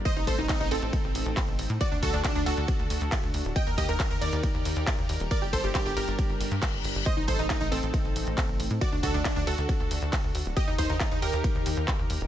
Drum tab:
RD |x---x---x---x---|x---x---x---x---|x---x---x---x---|x---x---x---x---|
HH |xxoxxxoxxxoxxxox|xxoxxxoxxxoxxxox|xxoxxxoxxxoxxxox|xxoxxxoxxxoxxxox|
CP |----x-------x---|----x-------x---|----x-------x---|----x-------x---|
BD |o-o-o---o---o---|o-o-o---o---o---|o-o-o---o---o---|o-o-o---o---o---|

RD |x---x---x---x---|x---x---x---x---|x---x---x---x---|
HH |xxoxxxoxxxoxxxox|xxoxxxoxxxoxxxox|xxoxxxoxxxoxxxox|
CP |----x-------x---|----x-------x---|----x-------x---|
BD |o-o-o---o---o---|o-o-o---o---o---|o-o-o---o---o---|